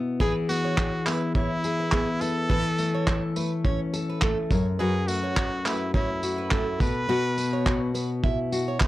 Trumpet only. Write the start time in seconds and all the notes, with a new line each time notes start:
0.21 G#4
0.49 F#4
1.07 E4
1.35 E4
2.21 A4
4.80 G#4
5.08 F#4
5.67 E4
5.95 E4
6.52 E4
6.81 B4